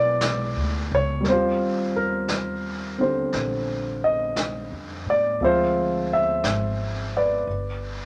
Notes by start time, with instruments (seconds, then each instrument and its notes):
Already playing: upright bass B1, grand piano G#3 B3 D4 E4 F#4 B4 D5
0.21 brush sweep, snare, hi-hat pedal
0.56 upright bass D2
0.91 upright bass C#2, grand piano C#5
1.21 grand piano G3 A#4, brush sweep, snare
1.26 upright bass D#2, grand piano C4 C5
1.31 grand piano F4 G4
1.96 grand piano A#4
2.28 brush sweep, snare, hi-hat pedal
2.98 grand piano D3 C4 G4 C5
3.32 upright bass A#1, brush sweep, snare
4.04 grand piano D#5
4.36 brush sweep, snare, hi-hat pedal
4.72 upright bass F2
5.06 upright bass A2
5.10 grand piano D5
5.40 upright bass D2, grand piano F3 G#3 C4 E5, brush sweep
5.44 grand piano F4 C5
6.13 grand piano E5
6.44 upright bass G#1, brush sweep, snare, hi-hat pedal
7.17 grand piano B4 D5
7.47 upright bass G1, brush sweep